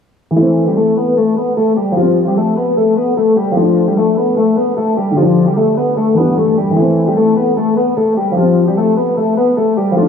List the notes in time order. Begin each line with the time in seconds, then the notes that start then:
0.31 E3
0.36 E3 A3 E4
0.42 C4
0.68 G3 G4
0.77 A3 A4
0.97 B3 B4
1.17 A3 A4
1.37 B3 B4
1.57 A3 A4
1.77 G3 G4
1.92 F3
1.97 F3 G3 F4
2.02 C4
2.27 G3 G4
2.37 A3 A4
2.57 B3 B4
2.77 A3 A4
2.97 B3 B4
3.17 A3 A4
3.37 G3 G4
3.52 F3
3.57 F3 A3 F4
3.62 D4
3.88 G3 G4
3.97 A3 A4
4.17 B3 B4
4.37 A3 A4
4.57 B3 B4
4.77 A3 A4
4.97 G3 G4
5.11 D3
5.17 F3 G3 F4
5.22 D4
5.48 G3 G4
5.57 A3 A4
5.77 B3 B4
5.97 A3 A4
6.15 E3 G3 B3 B4
6.20 D4
6.37 A3 A4
6.57 G3 G4
6.71 E3
6.76 E3 A3 E4
6.82 C4
7.07 G3 G4
7.17 A3 A4
7.37 B3 B4
7.57 A3 A4
7.77 B3 B4
7.97 A3 A4
8.17 G3 G4
8.32 F3
8.37 F3 G3 F4
8.42 C4
8.68 G3 G4
8.77 A3 A4
8.97 B3 B4
9.17 A3 A4
9.37 B3 B4
9.57 A3 A4
9.77 G3 G4
9.91 F3
9.97 F3 A3 F4
10.02 D4